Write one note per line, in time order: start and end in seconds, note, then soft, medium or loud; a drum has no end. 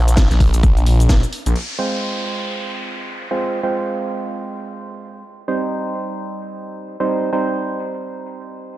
0.00 0.29 A#1 medium
0.08 closed hi-hat medium
0.08 cabasa medium
0.17 kick loud
0.17 snare loud
0.17 cabasa medium
0.31 0.52 A#1 loud
0.31 snare soft
0.31 closed hi-hat soft
0.31 cabasa soft
0.40 kick medium
0.40 open hi-hat medium
0.54 0.85 A#1 loud
0.54 closed hi-hat medium
0.54 cabasa medium
0.63 kick loud
0.63 cabasa medium
0.77 closed hi-hat medium
0.77 cabasa soft
0.86 1.21 A#1 loud
0.86 open hi-hat loud
1.00 closed hi-hat medium
1.00 cabasa medium
1.09 kick loud
1.09 snare loud
1.09 cabasa medium
1.23 closed hi-hat medium
1.23 cabasa soft
1.33 open hi-hat medium
1.46 1.54 A#1 loud
1.46 closed hi-hat medium
1.46 cabasa medium
1.56 crash medium
1.56 downlifter medium
1.79 3.28 G#3 medium
1.79 3.28 C4 medium
1.79 3.28 F4 medium
1.79 3.28 C5 loud
3.31 3.61 G#3 medium
3.31 3.61 C4 medium
3.31 3.61 F4 medium
3.31 3.61 C5 loud
3.63 5.24 G#3 medium
3.63 5.24 C4 medium
3.63 5.24 F4 medium
3.63 5.24 C5 loud
5.48 6.97 G3 loud
5.48 6.97 C4 medium
5.48 6.97 D#4 medium
5.48 6.97 C5 loud
7.00 7.30 G3 loud
7.00 7.30 C4 medium
7.00 7.30 D#4 medium
7.00 7.30 C5 loud
7.33 8.78 G3 medium
7.33 8.78 C4 medium
7.33 8.78 D#4 medium
7.33 8.78 C5 loud